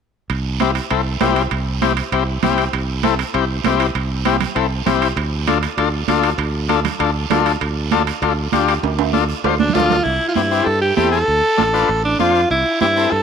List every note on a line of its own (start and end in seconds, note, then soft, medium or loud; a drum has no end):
0.30 0.78 C2 medium
0.30 high conga soft
0.30 high timbale medium
0.30 long guiro medium
0.60 0.71 C4 medium
0.60 0.71 E4 medium
0.60 0.71 G4 medium
0.60 high conga medium
0.60 high timbale medium
0.60 short guiro medium
0.75 high timbale medium
0.75 short guiro medium
0.90 1.15 C2 medium
0.90 1.01 C4 medium
0.90 1.01 E4 medium
0.90 1.01 A4 medium
0.90 high conga soft
0.90 high timbale medium
0.90 long guiro medium
1.20 1.46 C2 medium
1.20 1.42 C4 medium
1.20 1.42 E4 medium
1.20 1.43 G4 medium
1.20 high conga medium
1.20 high timbale medium
1.20 low timbale medium
1.20 short guiro medium
1.36 high timbale medium
1.36 short guiro medium
1.51 2.00 C2 loud
1.51 high conga soft
1.51 high timbale medium
1.51 long guiro medium
1.82 1.93 C4 medium
1.82 1.93 E4 medium
1.82 1.93 G4 medium
1.82 high conga medium
1.82 high timbale medium
1.82 short guiro medium
1.97 high timbale medium
1.97 short guiro medium
2.12 2.37 C2 medium
2.12 2.23 C4 medium
2.12 2.23 E4 medium
2.12 2.24 G4 medium
2.12 high conga soft
2.12 high timbale medium
2.12 long guiro medium
2.43 2.67 C2 medium
2.43 2.64 C4 medium
2.43 2.64 E4 medium
2.43 2.65 G4 medium
2.43 high conga medium
2.43 low conga medium
2.43 high timbale medium
2.43 short guiro medium
2.58 high timbale medium
2.58 short guiro medium
2.73 3.22 C2 loud
2.73 high conga soft
2.73 high timbale medium
2.73 long guiro medium
3.03 3.14 C4 medium
3.03 3.15 E4 medium
3.03 3.15 A4 medium
3.03 high conga medium
3.03 high timbale medium
3.03 short guiro medium
3.19 high timbale medium
3.19 short guiro medium
3.34 3.59 C2 loud
3.34 3.45 C4 medium
3.34 3.45 E4 medium
3.34 3.45 G4 medium
3.34 high conga soft
3.34 high timbale medium
3.34 long guiro medium
3.64 3.89 C2 medium
3.64 3.86 C4 medium
3.64 3.87 E4 medium
3.64 3.87 G4 medium
3.64 high conga medium
3.64 high timbale medium
3.64 low timbale medium
3.64 short guiro medium
3.80 high timbale medium
3.80 short guiro medium
3.95 4.44 C2 loud
3.95 high conga soft
3.95 high timbale medium
3.95 long guiro medium
4.25 4.36 C4 medium
4.25 4.37 E4 medium
4.25 4.37 G4 medium
4.25 high conga medium
4.25 high timbale medium
4.25 short guiro medium
4.41 low conga medium
4.41 high timbale medium
4.41 short guiro medium
4.55 4.80 C2 medium
4.55 4.66 C4 medium
4.55 4.67 E4 medium
4.55 4.67 A4 medium
4.55 high conga soft
4.55 high timbale medium
4.55 long guiro medium
4.86 5.11 C2 medium
4.86 5.08 C4 medium
4.86 5.08 E4 medium
4.86 5.08 G4 medium
4.86 high conga medium
4.86 low conga medium
4.86 high timbale medium
4.86 short guiro medium
5.02 high timbale medium
5.02 short guiro medium
5.16 5.65 D2 loud
5.16 high conga soft
5.16 high timbale medium
5.16 long guiro medium
5.47 5.58 D4 medium
5.47 5.58 F4 medium
5.47 5.59 A4 medium
5.47 high conga medium
5.47 high timbale medium
5.47 short guiro medium
5.63 high timbale medium
5.63 short guiro medium
5.77 6.02 D2 medium
5.77 5.89 D4 medium
5.77 5.89 F4 medium
5.77 5.89 A4 medium
5.77 high conga soft
5.77 high timbale medium
5.77 long guiro medium
6.08 6.33 D2 medium
6.08 6.30 D4 medium
6.08 6.30 F4 medium
6.08 6.30 A4 medium
6.08 high conga medium
6.08 high timbale medium
6.08 short guiro medium
6.23 high timbale medium
6.23 short guiro medium
6.38 6.87 D2 loud
6.38 high conga soft
6.38 high timbale medium
6.38 long guiro medium
6.69 6.80 D4 medium
6.69 6.80 F4 medium
6.69 6.80 A4 medium
6.69 high conga medium
6.69 high timbale medium
6.69 short guiro medium
6.85 low conga medium
6.85 high timbale medium
6.85 short guiro medium
6.99 7.24 D2 medium
6.99 7.10 D4 medium
6.99 7.11 F4 medium
6.99 7.11 A4 medium
6.99 high conga soft
6.99 high timbale medium
6.99 long guiro medium
7.30 7.55 D2 medium
7.30 7.52 D4 medium
7.30 7.52 F4 medium
7.30 7.52 A4 medium
7.30 high conga medium
7.30 low conga medium
7.30 high timbale medium
7.30 low timbale medium
7.30 short guiro medium
7.46 high timbale medium
7.46 short guiro medium
7.61 8.10 D2 loud
7.61 high conga soft
7.61 high timbale medium
7.61 long guiro medium
7.91 8.03 D4 medium
7.91 8.03 F4 medium
7.91 8.03 A4 loud
7.91 high conga medium
7.91 high timbale medium
7.91 short guiro medium
8.07 high timbale medium
8.07 short guiro medium
8.22 8.46 D2 loud
8.22 8.33 D4 medium
8.22 8.33 F4 medium
8.22 8.34 A4 medium
8.22 high conga soft
8.22 high timbale medium
8.52 8.77 D2 medium
8.52 8.74 D4 medium
8.52 8.74 F4 medium
8.52 8.74 G4 medium
8.52 high conga medium
8.52 high timbale medium
8.52 short guiro medium
8.68 high timbale medium
8.68 short guiro medium
8.83 9.32 D2 loud
8.83 high conga soft
8.83 high timbale medium
8.83 long guiro medium
8.99 high timbale loud
9.13 9.24 D4 medium
9.13 9.24 F4 medium
9.13 9.25 A4 medium
9.13 high conga medium
9.13 short guiro medium
9.29 short guiro medium
9.44 9.69 D2 medium
9.44 9.55 D4 medium
9.44 9.55 F4 medium
9.44 9.55 C5 medium
9.44 high conga soft
9.44 low timbale medium
9.44 long guiro medium
9.60 9.75 D4 medium
9.60 high conga medium
9.70 low conga medium
9.74 9.99 D2 medium
9.74 9.96 D4 medium
9.74 10.06 F4 medium
9.74 9.96 F4 medium
9.74 9.97 A4 medium
9.74 low timbale medium
9.74 short guiro medium
9.80 low conga medium
9.90 low conga medium
9.90 low timbale medium
9.90 short guiro medium
10.04 10.18 C2 medium
10.04 10.28 E4 medium
10.04 high conga soft
10.04 long guiro medium
10.28 10.36 F4 medium
10.35 10.61 G2 medium
10.35 10.41 C4 medium
10.35 10.67 E4 medium
10.35 10.42 E4 medium
10.35 10.42 G4 medium
10.35 high conga medium
10.35 short guiro medium
10.51 10.67 C4 medium
10.51 10.67 E4 medium
10.51 10.68 G4 medium
10.51 short guiro medium
10.65 10.91 G2 medium
10.65 10.81 A4 medium
10.65 high conga soft
10.65 long guiro medium
10.81 10.96 G4 medium
10.97 11.22 E2 medium
10.97 11.18 C4 medium
10.97 11.19 E4 medium
10.97 11.11 G4 medium
10.97 11.19 A4 medium
10.97 high conga medium
10.97 short guiro medium
11.12 12.00 A4 loud
11.12 short guiro medium
11.27 11.40 D2 medium
11.27 high conga soft
11.27 long guiro medium
11.57 11.83 A1 medium
11.57 11.63 D4 medium
11.57 11.64 F4 medium
11.57 11.64 A4 loud
11.57 high conga medium
11.57 short guiro medium
11.73 11.90 D4 medium
11.73 11.90 F4 medium
11.73 11.90 B4 medium
11.73 short guiro medium
11.89 12.14 A1 medium
11.89 high conga soft
11.89 long guiro medium
12.05 12.19 D4 medium
12.19 12.44 F2 medium
12.19 12.41 D4 medium
12.19 12.48 F4 medium
12.19 12.41 F4 medium
12.19 12.41 C5 medium
12.19 high conga medium
12.19 short guiro medium
12.35 short guiro medium
12.50 12.63 C2 loud
12.50 12.79 E4 medium
12.50 high conga soft
12.50 long guiro medium
12.81 13.06 G2 medium
12.81 12.86 C4 medium
12.81 12.87 E4 medium
12.81 13.13 E4 medium
12.81 12.87 G4 medium
12.81 high conga medium
12.81 short guiro medium
12.96 13.12 C4 medium
12.96 13.13 E4 medium
12.96 13.13 A4 medium
12.96 short guiro medium
13.11 13.23 G2 medium
13.11 13.23 A4 medium
13.11 high conga soft
13.11 long guiro medium